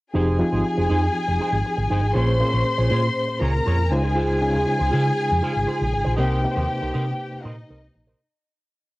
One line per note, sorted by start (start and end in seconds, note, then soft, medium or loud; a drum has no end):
0.14 0.41 F1 loud
0.14 0.36 F3 medium
0.14 0.36 C4 medium
0.14 0.37 D#4 medium
0.14 0.36 D#4 medium
0.14 0.37 G4 medium
0.14 2.11 G#4 medium
0.14 0.37 G#4 medium
0.14 0.38 G#4 medium
0.14 0.38 C5 loud
0.14 2.11 G#5 medium
0.39 1.28 F3 medium
0.39 1.28 C4 medium
0.39 1.28 D#4 medium
0.39 1.28 F4 medium
0.39 1.28 G#4 medium
0.52 0.61 G#1 medium
0.52 0.64 D#4 medium
0.52 0.64 G#4 soft
0.52 0.64 C5 medium
0.66 muted clean electric guitar stroke soft
0.77 0.86 F1 medium
0.77 0.88 D#4 medium
0.77 0.89 G#4 medium
0.77 0.89 C5 medium
0.90 1.07 F2 medium
0.90 1.05 D#4 medium
0.90 1.03 G#4 medium
0.90 1.02 C5 medium
1.03 muted clean electric guitar stroke soft
1.28 1.36 F1 medium
1.28 muted clean electric guitar stroke soft
1.40 1.55 D#4 medium
1.40 1.53 G#4 medium
1.40 1.51 C5 medium
1.52 1.61 G#1 medium
1.52 muted clean electric guitar stroke medium
1.65 muted clean electric guitar stroke soft
1.77 1.86 G#1 medium
1.77 muted clean electric guitar stroke soft
1.90 2.03 G1 medium
1.90 2.06 D#4 medium
1.90 2.02 G#4 medium
1.90 2.01 C5 medium
2.03 2.11 G#1 medium
2.03 muted clean electric guitar stroke soft
2.14 2.41 A#1 loud
2.14 2.37 A#2 medium
2.14 2.37 A#3 medium
2.14 2.37 C#4 medium
2.14 2.38 F4 medium
2.14 2.38 G#4 medium
2.14 3.38 C5 medium
2.14 2.38 C5 medium
2.14 2.39 C#5 medium
2.14 3.38 C6 medium
2.39 3.29 A#2 medium
2.39 3.29 A#3 medium
2.39 3.29 C#4 medium
2.39 3.29 G#4 medium
2.39 3.29 C5 loud
2.39 muted clean electric guitar stroke soft
2.51 2.62 A#1 medium
2.51 2.64 F4 soft
2.51 2.64 G#4 soft
2.51 2.64 C#5 medium
2.65 muted clean electric guitar stroke soft
2.78 2.87 A#1 medium
2.78 2.89 F4 soft
2.78 2.90 G#4 medium
2.78 2.90 C#5 medium
2.90 3.08 A#2 medium
2.90 3.06 F4 medium
2.90 3.03 G#4 medium
2.90 3.02 C#5 medium
3.03 muted clean electric guitar stroke soft
3.28 muted clean electric guitar stroke soft
3.40 3.59 C#2 medium
3.40 3.56 F4 medium
3.40 3.53 G#4 medium
3.40 3.90 A#4 medium
3.40 3.52 C#5 medium
3.40 3.90 A#5 medium
3.53 muted clean electric guitar stroke soft
3.66 3.92 F2 medium
3.66 3.81 F4 medium
3.66 3.78 G#4 medium
3.66 3.77 C#5 medium
3.78 muted clean electric guitar stroke soft
3.91 4.56 C#2 medium
3.91 4.36 C#3 medium
3.91 4.36 G#3 medium
3.91 4.36 D#4 medium
3.91 4.36 F4 medium
3.91 6.15 G#4 medium
3.91 4.36 C5 loud
3.91 6.15 G#5 loud
3.91 muted clean electric guitar stroke soft
4.03 4.14 F4 medium
4.03 4.15 G#4 medium
4.03 4.16 C5 medium
4.16 4.39 F4 medium
4.16 4.40 G#4 medium
4.16 4.40 C5 loud
4.41 5.31 C#3 medium
4.41 5.31 G#3 medium
4.41 5.31 D#4 medium
4.41 5.31 F4 medium
4.41 5.31 G#4 loud
4.41 muted clean electric guitar stroke soft
4.53 4.64 D#2 medium
4.53 4.65 F4 soft
4.53 4.66 G#4 medium
4.53 4.66 C5 medium
4.66 muted clean electric guitar stroke soft
4.79 4.89 C#2 medium
4.79 4.90 F4 soft
4.79 4.92 G#4 medium
4.79 4.91 C5 medium
4.91 5.10 C#3 medium
4.91 5.07 F4 medium
4.91 5.05 G#4 medium
4.91 5.04 C5 medium
5.05 muted clean electric guitar stroke soft
5.30 5.40 F2 medium
5.30 muted clean electric guitar stroke soft
5.42 5.58 F4 medium
5.42 5.54 G#4 medium
5.42 5.53 C5 medium
5.55 5.65 G#1 medium
5.55 muted clean electric guitar stroke soft
5.67 5.83 F4 medium
5.67 5.80 G#4 medium
5.67 5.78 C5 medium
5.80 5.94 A#1 medium
5.80 muted clean electric guitar stroke soft
5.92 6.02 G#1 medium
5.92 muted clean electric guitar stroke soft
6.04 6.15 A#1 medium
6.04 6.16 F4 soft
6.04 6.17 G#4 medium
6.04 6.17 C5 medium
6.16 6.44 C2 loud
6.16 6.41 C3 medium
6.16 6.41 A#3 medium
6.16 6.41 D#4 medium
6.16 7.42 G4 medium
6.16 6.41 G4 medium
6.16 6.41 A#4 medium
6.16 6.41 C5 medium
6.16 7.42 G5 medium
6.42 7.33 C3 medium
6.42 7.33 A#3 medium
6.42 7.33 D#4 medium
6.42 7.33 G4 medium
6.42 6.51 B4 medium
6.42 muted clean electric guitar stroke medium
6.51 7.36 C5 medium
6.51 6.68 C5 medium
6.56 6.65 D#2 loud
6.56 6.67 D#4 medium
6.56 6.68 A#4 medium
6.68 muted clean electric guitar stroke soft
6.81 6.91 C2 medium
6.81 6.92 D#4 medium
6.81 6.93 A#4 medium
6.81 6.93 C5 medium
6.94 7.12 C3 medium
6.94 7.09 D#4 medium
6.94 7.06 A#4 medium
6.94 7.05 C5 loud
7.06 muted clean electric guitar stroke soft
7.31 muted clean electric guitar stroke soft
7.44 7.62 A#2 medium
7.44 7.60 D#4 medium
7.44 8.19 D#4 medium
7.44 7.57 A#4 medium
7.44 7.56 C5 loud
7.44 8.19 D#5 medium
7.57 muted clean electric guitar stroke soft
7.69 7.87 C2 medium
7.69 7.85 D#4 medium
7.69 7.82 A#4 medium
7.69 7.81 C5 medium
7.82 muted clean electric guitar stroke soft
7.95 8.12 A#1 medium
7.95 muted clean electric guitar stroke soft
8.07 8.20 D#4 medium
8.07 8.20 A#4 medium
8.07 8.19 C5 medium